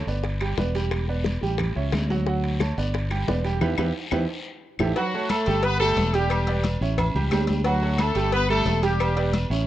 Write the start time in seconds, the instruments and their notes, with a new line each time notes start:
0.07 fingered electric bass G1, grand piano B3 B4 D5, high conga, short guiro
0.24 high bongo, high conga, high timbale, long guiro
0.40 grand piano G3 G4 G5, high conga, high timbale, claves
0.58 fingered electric bass E1, grand piano B3 B4 D5, high bongo, low bongo, high conga, short guiro
0.75 grand piano G3 G4 G5, high conga, high timbale, short guiro
0.91 high bongo, high conga, high timbale, long guiro, claves
1.08 grand piano B3 B4 D5, high bongo, high conga
1.24 high bongo, high conga, high timbale, short guiro
1.41 fingered electric bass A1, grand piano G3 G4 G5, high bongo, high conga, short guiro
1.58 high bongo, high conga, low conga, high timbale, long guiro, claves
1.75 fingered electric bass C#2, grand piano C#4 C#5 E5, high bongo, high conga
1.92 fingered electric bass D2, high bongo, low bongo, high conga, high timbale, low timbale, short guiro, claves
2.10 grand piano F#3 F#4 F#5, high conga, short guiro
2.27 grand piano F#3 F#4 F#5, high bongo, high conga, long guiro
2.44 high conga, high timbale
2.60 grand piano A3 A4 C#5, high bongo, high conga, high timbale, short guiro, claves
2.77 fingered electric bass G1, grand piano B3 B4 D5, high conga, short guiro
2.94 high bongo, high conga, high timbale, long guiro
3.11 grand piano G3 G4 G5, high conga, high timbale, claves
3.28 fingered electric bass E1, grand piano B3 B4 D5, high bongo, low bongo, high conga, low timbale, short guiro
3.44 grand piano G3 G4 G5, high timbale, short guiro
3.61 fingered electric bass E2, grand piano E4 G4 B4, low bongo, low conga, high timbale, long guiro, claves
3.78 fingered electric bass E2, grand piano E4 G4 B4, low bongo, low conga, high timbale, long guiro, claves
4.11 fingered electric bass E2, grand piano E4 G4 B4, low bongo, low conga, high timbale, long guiro, claves
4.79 fingered electric bass A1, grand piano E4 G4 A4, low bongo, low conga, high timbale, long guiro, claves
4.96 grand piano F#3 F#4 F#5, horn section F#3 F#4, cowbell, low agogo, long guiro
5.14 grand piano A3 A4 C#5, high conga
5.29 horn section A3 A4, cowbell, high conga, low agogo, short guiro, claves
5.46 fingered electric bass G1, grand piano G3 G4 G5, cowbell, high conga, short guiro
5.63 horn section B3 B4, cowbell, high conga, low agogo, long guiro
5.80 grand piano G3 G4 G5, horn section A3 A4, high conga, low agogo, claves
5.96 fingered electric bass E1, cowbell, high conga, short guiro
6.13 grand piano G3 G4 G5, horn section G3 G4, cowbell, low agogo, short guiro
6.30 cowbell, high conga, low agogo, long guiro, claves
6.47 grand piano B3 B4 D5, cowbell, high conga
6.64 cowbell, high conga, low agogo, short guiro
6.81 fingered electric bass A1, grand piano C#4 C#5 E5, high conga, short guiro
6.98 cowbell, high conga, low conga, low agogo, long guiro, claves
7.15 fingered electric bass C#2, grand piano G3 G4 G5, high conga, low conga, low agogo
7.31 fingered electric bass D2, grand piano G3 G4 G5, cowbell, high conga, low timbale, low agogo, short guiro, claves
7.47 cowbell, high conga, short guiro
7.64 grand piano F#3 F#4 F#5, horn section F#3 F#4, cowbell, high conga, low agogo, long guiro
7.82 grand piano A3 A4 C#5, high conga
7.98 horn section A3 A4, cowbell, high conga, low agogo, short guiro, claves
8.15 fingered electric bass G1, grand piano G3 G4 G5, cowbell, high conga, short guiro
8.32 horn section B3 B4, cowbell, high conga, low agogo, long guiro
8.49 grand piano G3 G4 G5, horn section A3 A4, high conga, low agogo, claves
8.65 fingered electric bass E1, cowbell, high conga, short guiro
8.83 grand piano G3 G4 G5, horn section G3 G4, cowbell, high conga, low agogo, short guiro
9.00 cowbell, high conga, low agogo, long guiro, claves
9.16 grand piano B3 B4 D5, cowbell, high conga
9.33 cowbell, high conga, low agogo, short guiro
9.50 fingered electric bass A1, grand piano C#4 C#5 E5, high conga, short guiro